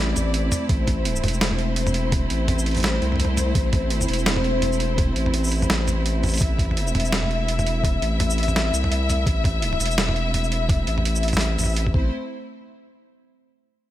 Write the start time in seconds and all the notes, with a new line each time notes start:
Already playing: A1 A3 C4 E4 D5
0.16 A1, closed hi-hat, mid tom, shaker
0.34 closed hi-hat
0.52 closed hi-hat, mid tom, shaker
0.69 A1 C5, kick, closed hi-hat
0.87 kick, closed hi-hat, mid tom
1.05 closed hi-hat
1.16 shaker
1.23 E1, closed hi-hat, mid tom
1.28 closed hi-hat
1.34 shaker
1.41 snare, closed hi-hat
1.51 mid tom
1.59 closed hi-hat
1.76 closed hi-hat
1.87 mid tom, shaker
1.94 closed hi-hat
2.12 kick, closed hi-hat, mid tom
2.30 A1, closed hi-hat
2.48 closed hi-hat, mid tom
2.59 shaker
2.66 closed hi-hat
2.71 closed hi-hat
2.75 closed hi-hat, mid tom, shaker
2.78 closed hi-hat
2.80 closed hi-hat
2.83 snare, closed hi-hat
2.86 closed hi-hat
3.02 C2, closed hi-hat
3.12 mid tom
3.16 mid tom
3.20 closed hi-hat, mid tom
3.25 mid tom
3.37 closed hi-hat, mid tom, shaker
3.55 A1, kick, closed hi-hat
3.73 kick, closed hi-hat, mid tom
3.90 G#1, closed hi-hat
4.01 mid tom, shaker
4.08 E1, closed hi-hat
4.13 closed hi-hat
4.19 shaker
4.26 snare, closed hi-hat
4.36 mid tom
4.44 closed hi-hat
4.62 closed hi-hat, mid tom
4.72 shaker
4.80 closed hi-hat
4.98 kick, closed hi-hat, mid tom
5.16 A1, closed hi-hat
5.26 mid tom
5.34 closed hi-hat
5.44 shaker
5.46 shaker
5.48 shaker
5.50 closed hi-hat, shaker
5.52 shaker
5.57 shaker
5.60 mid tom, shaker
5.62 shaker
5.70 A1, snare, closed hi-hat
5.88 closed hi-hat, mid tom, shaker
6.06 closed hi-hat
6.24 closed hi-hat, mid tom, shaker
6.26 closed hi-hat, shaker
6.29 shaker
6.31 closed hi-hat, shaker
6.34 shaker
6.35 closed hi-hat, shaker
6.37 shaker
6.40 A1 E5, kick, closed hi-hat, shaker
6.59 kick, closed hi-hat, mid tom
6.65 mid tom
6.71 mid tom
6.77 closed hi-hat
6.87 shaker
6.94 E1, closed hi-hat, mid tom
7.00 closed hi-hat
7.05 shaker
7.12 snare, closed hi-hat
7.23 mid tom
7.31 closed hi-hat
7.48 closed hi-hat
7.59 mid tom, shaker
7.67 closed hi-hat
7.84 kick, closed hi-hat, mid tom
8.02 A1, closed hi-hat
8.20 closed hi-hat, mid tom
8.30 shaker
8.38 closed hi-hat
8.43 closed hi-hat
8.48 mid tom, shaker
8.56 snare, closed hi-hat
8.73 C2, closed hi-hat, shaker
8.84 mid tom
8.92 closed hi-hat
9.10 closed hi-hat, mid tom, shaker
9.26 A1, kick, closed hi-hat
9.44 kick, closed hi-hat, mid tom
9.62 closed hi-hat
9.73 mid tom
9.80 E1, closed hi-hat, shaker
9.86 closed hi-hat
9.91 shaker
9.98 snare, closed hi-hat
10.09 mid tom
10.16 closed hi-hat
10.34 closed hi-hat, mid tom
10.44 shaker
10.52 closed hi-hat
10.69 kick, closed hi-hat, mid tom
10.87 A1, closed hi-hat
10.98 mid tom
11.05 closed hi-hat
11.16 shaker
11.23 closed hi-hat
11.28 closed hi-hat
11.33 snare, mid tom, shaker
11.41 closed hi-hat
11.58 A1, closed hi-hat, mid tom, shaker
11.61 mid tom, shaker
11.64 mid tom, shaker
11.66 mid tom, shaker
11.69 shaker
11.71 shaker
11.73 shaker
11.75 closed hi-hat, shaker
11.87 kick
11.94 A1 A3 C4 E4 C5, kick